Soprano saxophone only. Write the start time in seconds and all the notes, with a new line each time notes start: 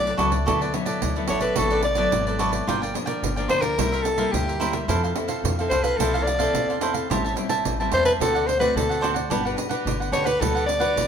Already playing: D5
1.29 C#5
1.42 B4
1.57 A4
1.84 D5
3.50 C5
3.61 A#4
4.03 A4
4.32 G4
5.69 C5
5.83 B4
5.97 A4
6.23 D5
7.94 C5
8.05 B4
8.21 A4
8.47 C5
8.60 B4
8.76 A4
10.12 C#5
10.25 B4
10.40 A4
10.66 D5